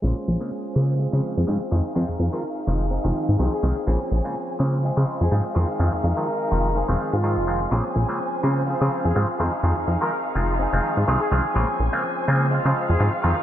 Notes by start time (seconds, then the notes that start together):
0.02 A#1 C#3 G#3 A#3 C4 C#4 F4 C5 G#5
0.07 C5
0.28 A#1
0.40 C#3 G#3 A#3 C4 F4
0.75 C#3 G#3 A#3 C4 F4
0.99 G#3 C4 F4 G#4 F5
1.13 C#3 F3 G#3 C4 F4
1.37 F2 G#4
1.47 G#2 C#3 F3 G#3 C4 F4 G#4
1.71 F2 D#3 F3 G#3 C4 D#4 F4 G#4
1.76 C4
1.95 F2 D#3 F3 G#3 C4 F4
2.09 F2
2.20 F2
2.33 D#3 F3 G#3 C4 F4 A#4
2.67 F1 D#3 F3 G#3 C4 F4
2.91 C4 D#4 G#4
3.04 F1 D#3 F3 G#3 C4 F4
3.29 G#2
3.39 C2 D#3 F3 G#3 C4 D#4 F4 G#4
3.53 G#4
3.63 C2 D#3 F3 G#3 C4 F4
3.87 A#1 C#3 F3 G#3 A#3 C4 C#4 F4 C5 G#5
3.92 G#4
4.12 A#1
4.24 C#3 G#3 A#3 C4 F4
4.59 C#3 G#3 A#3 C4 F4
4.83 F3 G#3 C4 G#4 C5 F5
4.97 C#3 F3 G#3 C4 F4
5.21 F2 G#4
5.31 G#2 C#3 F3 G#3 C4 F4 G#4
5.54 F2 D#3 F3 G#3 C4 D#4 F4 G#4
5.60 D#3
5.80 F2 D#3 F3 G#3 C4 F4
6.04 F2
6.17 D#3 F3 G#3 C4 F4 A#4
6.51 F1 D#3 F3 G#3 C4 F4
6.75 D#3 G#3 C4 G#4
6.88 F1 D#3 F3 G#3 C4 F4
7.13 G#2 F4
7.23 D#3 F3 G#3 C4 F4 G#4
7.37 F1
7.47 D#3 F3 G#3 C4 F4
7.70 A#1 C#3 F3 G#3 A#3 C4 C#4 F4 C5 G#5
7.76 G#4
7.96 A#1
8.08 C#3 G#3 A#3 C4 F4
8.43 C#3 G#3 A#3 C4 F4
8.67 F3 C4 F4 G#4 F5
8.81 C#3 F3 G#3 C4 F4
9.05 F2 G#4
9.15 G#2 C#3 F3 G#3 C4 F4 G#4
9.38 F2 D#3 F3 G#3 C4 D#4 F4 G#4 F5
9.43 C4
9.63 F2 D#3 F3 G#3 C4 F4
9.77 F2
9.88 F2
10.01 D#3 F3 G#3 C4 F4 A#4
10.35 F1 D#3 F3 G#3 C4 F4
10.59 C4 D#4 G#4
10.73 F1 D#3 F3 G#3 C4 F4
10.97 G#2
11.07 C2 D#3 F3 G#3 C4 D#4 F4 G#4
11.21 G#4
11.31 C2 D#3 F3 G#3 C4 F4
11.54 A#1 C#3 F3 G#3 A#3 C4 C#4 F4 C5 G#5
11.59 G#4
11.80 A#1
11.93 C#3 G#3 A#3 C4 F4
12.28 C#3 G#3 A#3 C4 F4
12.51 G#3 C4 F4 F5
12.65 C#3 F3 G#3 C4 F4
12.89 F2 G#4
12.99 G#2 C#3 F3 G#3 C4 F4
13.22 F2 D#3 F3 G#3 C4 D#4 F4 G#4
13.27 D#3